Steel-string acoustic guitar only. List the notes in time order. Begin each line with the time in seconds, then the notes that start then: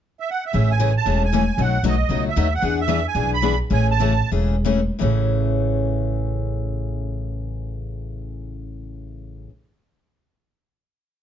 0.53 C#3 E3 A3 C#4 G#4
0.79 C#3 E3 A3 C#4 G#4
1.05 C#3 E3 A3 C#4 G#4
1.33 C#3 E3 A3 C#4 G#4
1.58 B2 F#3 A3 D#4 F#4
1.84 B2 F#3 A3 D#4 F#4
2.09 B2 F#3 A3 D#4 F#4
2.36 B2 F#3 A3 D#4 F#4
2.62 E3 B3 D4 G#4
2.88 E3 B3 D4 G#4
3.15 E3 B3 D4 G#4
3.42 E3 B3 D4 G#4
3.70 C#3 E3 A3 C#4 G#4
4.00 C#3 E3 A3 C#4 G#4
4.31 C#3 E3 A3 C#4 G#4
4.65 C#3 E3 A3 C#4 G#4
4.99 A2 C#3 E3 A3 C#4 G#4